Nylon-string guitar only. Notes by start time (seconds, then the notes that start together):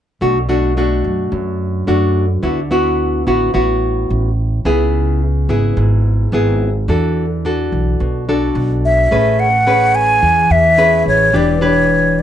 0.21 B2 A3 D4 F#4
0.49 A3 D4 F#4
0.77 A3 D4 F#4
1.32 F#2
1.87 A3 D4 F#4
2.43 D3 B3 E4 F#4
2.71 B3 E4 F#4
3.27 B3 E4 F#4
3.54 A2 B3 E4 F#4
4.65 C#3 B3 E4 G#4
5.49 B3 E4 G#4
5.77 G#2
6.33 B3 E4 G#4
6.88 E3 D4 F#4 A4
7.45 D4 F#4 A4
8.00 B2
8.29 D4 F#4 A4
9.11 A3 C#4 G#4 B4
9.67 C#4 G#4 B4
10.22 E3
10.78 C#4 G#4 B4
11.33 E3 D4 G4 B4
11.61 D4 G4 B4